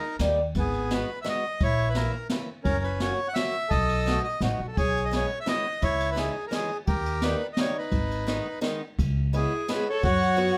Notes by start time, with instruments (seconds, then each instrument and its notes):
Already playing: accordion D#4 A#4
0.19 upright bass D#2, steel-string acoustic guitar G3 A#3 D#4 G4, snare, ride
0.55 upright bass G#1, accordion B3, kick, ride
0.59 accordion G#4
0.74 ride
0.91 steel-string acoustic guitar G#3 B3 D#4 F#4, accordion B4, snare, ride
1.22 steel-string acoustic guitar G#3 B3 D#4 F#4, accordion E5, snare, ride
1.29 accordion D#5
1.60 upright bass A#1, accordion C#5, kick, ride
1.64 accordion E4
1.79 ride
1.89 accordion B4
1.95 steel-string acoustic guitar E3 A#3 C#4 E4, accordion A#4, snare, ride
2.29 steel-string acoustic guitar E3 A#3 C#4 E4, snare, ride
2.64 upright bass F#1, accordion C#4 A#4, kick, ride
2.84 accordion B4, ride
3.00 steel-string acoustic guitar F#3 A#3 C#4 F#4, accordion C#5, snare, ride
3.28 accordion F#5
3.34 steel-string acoustic guitar F#3 A#3 C#4 F#4, accordion E5, snare, ride
3.70 upright bass B1, accordion A4 D#5, kick, ride
3.89 ride
4.06 steel-string acoustic guitar A3 B3 D#4 F#4, snare, ride
4.24 accordion D#5
4.41 upright bass A1, steel-string acoustic guitar A3 B3 D#4 F#4, accordion F#4, snare, ride
4.59 upright bass B1
4.68 accordion A4
4.77 upright bass B1, accordion G#4 C#5, kick, ride
4.97 ride
5.05 accordion D#5
5.11 steel-string acoustic guitar G#3 B3 C#4 E4, snare, ride
5.16 accordion C#5
5.40 accordion E5
5.46 steel-string acoustic guitar G#3 B3 C#4 E4, accordion D#5, snare, ride
5.82 upright bass C#2, accordion E4 C#5, kick, ride
6.00 ride
6.12 steel-string acoustic guitar E3, accordion B4
6.16 steel-string acoustic guitar G#3 C#4 D#4, accordion G#4, snare, ride
6.47 steel-string acoustic guitar E3, accordion A#4
6.51 steel-string acoustic guitar G#3 C#4 D#4, accordion G#4, snare, ride
6.87 upright bass D#2, accordion G4 A#4, kick, ride
7.06 ride
7.22 steel-string acoustic guitar D#3 G3 A#3 D#4, accordion B4, snare, ride
7.53 accordion D#5, snare, ride
7.57 steel-string acoustic guitar D#3 G3 A#3 D#4, accordion C#5
7.77 accordion D#4 B4
7.91 upright bass G#1, kick, ride
8.11 ride
8.27 steel-string acoustic guitar D#3 G#3 B3 D#4, snare, ride
8.61 steel-string acoustic guitar D#3 G#3 B3 D#4, snare, ride
8.99 upright bass C#2, kick, ride
9.33 steel-string acoustic guitar G#3 B3 C#4 E4, violin E4, accordion G#4, ride
9.68 steel-string acoustic guitar G#3 B3 C#4 E4, violin G#4, accordion B4, snare, ride
9.90 violin A4, accordion C#5
10.03 upright bass F#2, accordion F#4 C#5, kick, ride
10.07 violin F#4
10.22 ride
10.37 steel-string acoustic guitar F#3 B3 C#4 F#4, ride